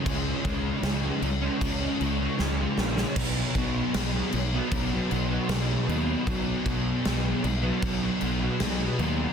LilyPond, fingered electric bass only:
\new Staff \with { instrumentName = "Fingered electric bass" } { \clef bass \time 4/4 \key cis \minor \tempo 4 = 77 cis,8 cis,8 cis,8 cis,8 cis,8 cis,8 cis,8 ais,,8 | b,,8 b,,8 b,,8 b,,8 b,,8 b,,8 b,,8 dis,8 | b,,8 b,,8 b,,8 b,,8 b,,8 b,,8 b,,8 dis,8 | }